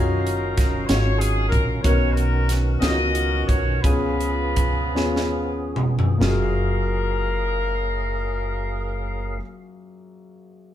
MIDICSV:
0, 0, Header, 1, 6, 480
1, 0, Start_track
1, 0, Key_signature, 6, "major"
1, 0, Tempo, 641711
1, 1382, Time_signature, 6, 3, 24, 8
1, 2355, Tempo, 708383
1, 3315, Tempo, 782269
1, 3795, Tempo, 855920
1, 4275, Tempo, 899550
1, 6697, End_track
2, 0, Start_track
2, 0, Title_t, "Horn section"
2, 0, Program_c, 0, 61
2, 0, Note_on_c, 0, 61, 61
2, 0, Note_on_c, 0, 63, 62
2, 0, Note_on_c, 0, 70, 77
2, 641, Note_off_c, 0, 63, 0
2, 643, Note_off_c, 0, 61, 0
2, 647, Note_on_c, 0, 73, 77
2, 658, Note_off_c, 0, 70, 0
2, 887, Note_on_c, 0, 68, 78
2, 895, Note_off_c, 0, 73, 0
2, 1112, Note_on_c, 0, 70, 73
2, 1134, Note_off_c, 0, 68, 0
2, 1348, Note_off_c, 0, 70, 0
2, 1360, Note_on_c, 0, 73, 84
2, 1376, Note_on_c, 0, 70, 60
2, 1381, Note_on_c, 0, 66, 62
2, 1576, Note_off_c, 0, 70, 0
2, 1585, Note_on_c, 0, 70, 75
2, 1610, Note_off_c, 0, 73, 0
2, 1881, Note_off_c, 0, 70, 0
2, 2076, Note_off_c, 0, 66, 0
2, 2095, Note_on_c, 0, 75, 92
2, 2104, Note_on_c, 0, 66, 61
2, 2108, Note_on_c, 0, 70, 60
2, 2553, Note_off_c, 0, 75, 0
2, 2574, Note_on_c, 0, 73, 85
2, 2793, Note_off_c, 0, 66, 0
2, 2794, Note_off_c, 0, 70, 0
2, 2807, Note_on_c, 0, 71, 77
2, 2815, Note_off_c, 0, 73, 0
2, 2824, Note_on_c, 0, 68, 56
2, 2827, Note_on_c, 0, 65, 60
2, 4008, Note_off_c, 0, 68, 0
2, 4009, Note_off_c, 0, 65, 0
2, 4023, Note_off_c, 0, 71, 0
2, 4280, Note_on_c, 0, 70, 71
2, 5972, Note_off_c, 0, 70, 0
2, 6697, End_track
3, 0, Start_track
3, 0, Title_t, "Upright piano"
3, 0, Program_c, 1, 0
3, 0, Note_on_c, 1, 61, 67
3, 0, Note_on_c, 1, 63, 65
3, 0, Note_on_c, 1, 65, 56
3, 0, Note_on_c, 1, 66, 70
3, 111, Control_c, 1, 64, 127
3, 425, Note_off_c, 1, 61, 0
3, 428, Note_off_c, 1, 63, 0
3, 430, Note_off_c, 1, 65, 0
3, 431, Note_off_c, 1, 66, 0
3, 663, Note_on_c, 1, 63, 47
3, 664, Note_on_c, 1, 61, 51
3, 670, Note_on_c, 1, 65, 51
3, 671, Note_on_c, 1, 66, 62
3, 1139, Note_off_c, 1, 61, 0
3, 1139, Note_off_c, 1, 63, 0
3, 1142, Note_off_c, 1, 65, 0
3, 1143, Note_off_c, 1, 66, 0
3, 1372, Note_on_c, 1, 59, 58
3, 1378, Note_on_c, 1, 61, 60
3, 1379, Note_on_c, 1, 47, 54
3, 1381, Note_on_c, 1, 63, 53
3, 1386, Note_on_c, 1, 70, 68
3, 1392, Control_c, 1, 64, 0
3, 1531, Control_c, 1, 64, 127
3, 1855, Note_off_c, 1, 59, 0
3, 1858, Note_off_c, 1, 61, 0
3, 1859, Note_off_c, 1, 63, 0
3, 1862, Note_off_c, 1, 70, 0
3, 2075, Note_off_c, 1, 47, 0
3, 2092, Note_on_c, 1, 59, 54
3, 2099, Note_on_c, 1, 61, 50
3, 2103, Note_on_c, 1, 63, 48
3, 2108, Note_on_c, 1, 65, 49
3, 2158, Note_off_c, 1, 65, 0
3, 2159, Note_on_c, 1, 66, 63
3, 2577, Note_off_c, 1, 59, 0
3, 2580, Note_off_c, 1, 61, 0
3, 2581, Note_off_c, 1, 63, 0
3, 2607, Note_off_c, 1, 66, 0
3, 2819, Note_on_c, 1, 59, 61
3, 2820, Note_on_c, 1, 61, 57
3, 2823, Note_on_c, 1, 49, 52
3, 2826, Note_on_c, 1, 65, 53
3, 2827, Note_on_c, 1, 68, 72
3, 2830, Control_c, 1, 64, 0
3, 2951, Control_c, 1, 64, 127
3, 3311, Note_off_c, 1, 59, 0
3, 3311, Note_off_c, 1, 61, 0
3, 3314, Note_off_c, 1, 65, 0
3, 3315, Note_off_c, 1, 68, 0
3, 3526, Note_off_c, 1, 49, 0
3, 3547, Note_on_c, 1, 59, 61
3, 3551, Note_on_c, 1, 61, 58
3, 3551, Note_on_c, 1, 65, 55
3, 3558, Note_on_c, 1, 68, 66
3, 4025, Note_off_c, 1, 59, 0
3, 4027, Note_off_c, 1, 61, 0
3, 4027, Note_off_c, 1, 65, 0
3, 4030, Note_off_c, 1, 68, 0
3, 4261, Note_on_c, 1, 58, 62
3, 4275, Note_on_c, 1, 65, 54
3, 4277, Note_on_c, 1, 42, 60
3, 4282, Control_c, 1, 64, 0
3, 4287, Note_on_c, 1, 66, 55
3, 4296, Note_on_c, 1, 68, 63
3, 4370, Control_c, 1, 64, 127
3, 5953, Note_off_c, 1, 58, 0
3, 5966, Note_off_c, 1, 65, 0
3, 5968, Note_off_c, 1, 42, 0
3, 5978, Note_off_c, 1, 66, 0
3, 5987, Note_off_c, 1, 68, 0
3, 6697, End_track
4, 0, Start_track
4, 0, Title_t, "Tonewheel organ"
4, 0, Program_c, 2, 16
4, 0, Note_on_c, 2, 51, 52
4, 0, Note_on_c, 2, 54, 46
4, 0, Note_on_c, 2, 61, 48
4, 0, Note_on_c, 2, 77, 55
4, 1354, Note_off_c, 2, 51, 0
4, 1354, Note_off_c, 2, 61, 0
4, 1356, Note_off_c, 2, 77, 0
4, 1357, Note_off_c, 2, 54, 0
4, 1379, Note_on_c, 2, 70, 61
4, 1380, Note_on_c, 2, 51, 51
4, 1384, Note_on_c, 2, 61, 50
4, 1387, Note_on_c, 2, 59, 47
4, 2793, Note_off_c, 2, 51, 0
4, 2793, Note_off_c, 2, 70, 0
4, 2795, Note_off_c, 2, 61, 0
4, 2797, Note_off_c, 2, 59, 0
4, 2825, Note_on_c, 2, 52, 44
4, 2826, Note_on_c, 2, 68, 60
4, 2830, Note_on_c, 2, 61, 46
4, 2831, Note_on_c, 2, 59, 50
4, 2872, Note_off_c, 2, 52, 0
4, 2876, Note_on_c, 2, 53, 55
4, 4255, Note_off_c, 2, 68, 0
4, 4256, Note_off_c, 2, 61, 0
4, 4257, Note_off_c, 2, 59, 0
4, 4276, Note_off_c, 2, 53, 0
4, 4278, Note_on_c, 2, 58, 55
4, 4278, Note_on_c, 2, 77, 60
4, 4280, Note_on_c, 2, 54, 67
4, 4280, Note_on_c, 2, 68, 70
4, 5969, Note_off_c, 2, 58, 0
4, 5970, Note_off_c, 2, 77, 0
4, 5971, Note_off_c, 2, 54, 0
4, 5971, Note_off_c, 2, 68, 0
4, 6697, End_track
5, 0, Start_track
5, 0, Title_t, "Upright bass"
5, 0, Program_c, 3, 32
5, 0, Note_on_c, 3, 30, 85
5, 640, Note_off_c, 3, 30, 0
5, 666, Note_on_c, 3, 32, 78
5, 1113, Note_off_c, 3, 32, 0
5, 1140, Note_on_c, 3, 34, 82
5, 1361, Note_off_c, 3, 34, 0
5, 1376, Note_on_c, 3, 35, 88
5, 2074, Note_off_c, 3, 35, 0
5, 2106, Note_on_c, 3, 37, 86
5, 2558, Note_off_c, 3, 37, 0
5, 2588, Note_on_c, 3, 35, 70
5, 2804, Note_off_c, 3, 35, 0
5, 2826, Note_on_c, 3, 37, 79
5, 3557, Note_off_c, 3, 37, 0
5, 3557, Note_on_c, 3, 39, 71
5, 4010, Note_off_c, 3, 39, 0
5, 4033, Note_on_c, 3, 29, 67
5, 4257, Note_off_c, 3, 29, 0
5, 4277, Note_on_c, 3, 30, 80
5, 5968, Note_off_c, 3, 30, 0
5, 6697, End_track
6, 0, Start_track
6, 0, Title_t, "Drums"
6, 199, Note_on_c, 9, 42, 39
6, 274, Note_off_c, 9, 42, 0
6, 430, Note_on_c, 9, 42, 69
6, 432, Note_on_c, 9, 36, 73
6, 444, Note_on_c, 9, 38, 31
6, 505, Note_off_c, 9, 42, 0
6, 507, Note_off_c, 9, 36, 0
6, 519, Note_off_c, 9, 38, 0
6, 665, Note_on_c, 9, 42, 70
6, 670, Note_on_c, 9, 38, 83
6, 740, Note_off_c, 9, 42, 0
6, 744, Note_off_c, 9, 38, 0
6, 907, Note_on_c, 9, 42, 58
6, 982, Note_off_c, 9, 42, 0
6, 1139, Note_on_c, 9, 36, 64
6, 1142, Note_on_c, 9, 42, 47
6, 1214, Note_off_c, 9, 36, 0
6, 1217, Note_off_c, 9, 42, 0
6, 1379, Note_on_c, 9, 36, 79
6, 1380, Note_on_c, 9, 42, 80
6, 1454, Note_off_c, 9, 36, 0
6, 1454, Note_off_c, 9, 42, 0
6, 1625, Note_on_c, 9, 42, 39
6, 1700, Note_off_c, 9, 42, 0
6, 1863, Note_on_c, 9, 42, 69
6, 1877, Note_on_c, 9, 38, 27
6, 1938, Note_off_c, 9, 42, 0
6, 1952, Note_off_c, 9, 38, 0
6, 2110, Note_on_c, 9, 42, 70
6, 2114, Note_on_c, 9, 38, 79
6, 2184, Note_off_c, 9, 42, 0
6, 2189, Note_off_c, 9, 38, 0
6, 2356, Note_on_c, 9, 42, 52
6, 2424, Note_off_c, 9, 42, 0
6, 2585, Note_on_c, 9, 36, 70
6, 2587, Note_on_c, 9, 42, 47
6, 2653, Note_off_c, 9, 36, 0
6, 2654, Note_off_c, 9, 42, 0
6, 2824, Note_on_c, 9, 36, 79
6, 2826, Note_on_c, 9, 42, 78
6, 2891, Note_off_c, 9, 36, 0
6, 2893, Note_off_c, 9, 42, 0
6, 3071, Note_on_c, 9, 42, 42
6, 3139, Note_off_c, 9, 42, 0
6, 3314, Note_on_c, 9, 42, 66
6, 3317, Note_on_c, 9, 36, 74
6, 3376, Note_off_c, 9, 42, 0
6, 3379, Note_off_c, 9, 36, 0
6, 3560, Note_on_c, 9, 38, 43
6, 3621, Note_off_c, 9, 38, 0
6, 3682, Note_on_c, 9, 38, 44
6, 3744, Note_off_c, 9, 38, 0
6, 4027, Note_on_c, 9, 45, 70
6, 4084, Note_off_c, 9, 45, 0
6, 4154, Note_on_c, 9, 43, 67
6, 4210, Note_off_c, 9, 43, 0
6, 4281, Note_on_c, 9, 38, 82
6, 4334, Note_off_c, 9, 38, 0
6, 6697, End_track
0, 0, End_of_file